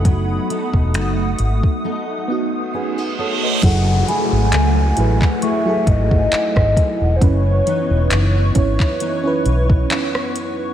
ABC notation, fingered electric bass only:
X:1
M:4/4
L:1/16
Q:"Swing 16ths" 1/4=67
K:F#dor
V:1 name="Fingered electric bass" clef=bass
F,,,2 z E,,, F,,,2 G,,, z8 z | F,,,2 z G,,, C,,2 A,,, z3 G,,,2 z G,,, z E,,, | F,,,2 z E,,, F,,,2 G,,, z3 B,,,2 z4 |]